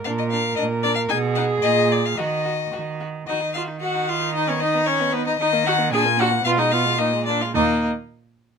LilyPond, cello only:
\new Staff \with { instrumentName = "Cello" } { \clef bass \time 2/4 \key ees \minor \tempo 4 = 113 bes,4 bes,4 | b,4 bes,4 | ees4 ees4 | ees2~ |
ees2 | ees4 bes,4 | ces4 bes,8 r8 | ees,8 r4. | }